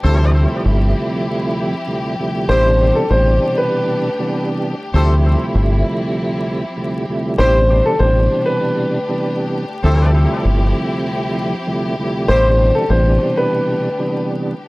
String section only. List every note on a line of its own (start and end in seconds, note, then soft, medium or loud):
0.00 2.46 F3 medium
0.00 2.46 C4 medium
0.00 2.46 E4 medium
0.00 7.35 G4 loud
2.48 4.91 D3 medium
2.48 4.91 A3 medium
2.48 4.91 D4 medium
4.95 7.37 F3 medium
4.95 7.37 C4 medium
4.95 7.37 E4 medium
7.39 9.82 D3 medium
7.39 9.81 A3 medium
7.39 9.82 D4 medium
7.39 14.68 G4 loud
9.83 12.26 F3 medium
9.83 12.26 C4 medium
9.83 12.26 E4 medium
12.27 14.68 D3 medium
12.27 14.68 A3 medium
12.27 14.68 D4 medium